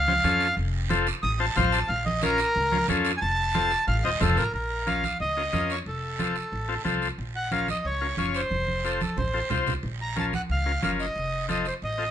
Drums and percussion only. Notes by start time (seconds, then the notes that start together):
0.08 high conga
0.24 high conga, short guiro
0.41 short guiro
0.58 high conga, long guiro
0.90 high conga, short guiro
1.07 short guiro
1.23 high conga, long guiro
1.56 high conga, low conga, short guiro
1.72 short guiro
1.88 high conga, long guiro
2.06 high conga
2.22 high conga, short guiro
2.38 short guiro
2.55 high conga, long guiro
2.72 high conga
2.88 high conga, short guiro
3.05 short guiro
3.21 high conga, long guiro
3.54 high conga, short guiro
3.71 short guiro
3.88 high conga, long guiro
4.21 high conga, low conga, short guiro
4.37 short guiro
4.54 long guiro
4.87 high conga, short guiro
5.04 high conga, short guiro
5.20 long guiro
5.53 high conga, short guiro
5.70 short guiro
5.86 long guiro
6.19 high conga, short guiro
6.36 short guiro
6.53 long guiro
6.85 high conga, short guiro
7.02 short guiro
7.19 long guiro
7.51 high conga, short guiro
7.68 high conga, short guiro
7.85 long guiro
8.17 high conga, short guiro
8.34 short guiro
8.51 high conga, long guiro
8.68 high conga
8.84 short guiro
9.01 high conga, short guiro
9.17 low conga, long guiro
9.50 low conga, short guiro
9.67 low conga, short guiro
9.83 long guiro
10.17 high conga, short guiro
10.33 high conga, short guiro
10.50 long guiro
10.83 high conga, short guiro
10.99 short guiro
11.16 long guiro
11.49 high conga, short guiro
11.65 short guiro
11.82 long guiro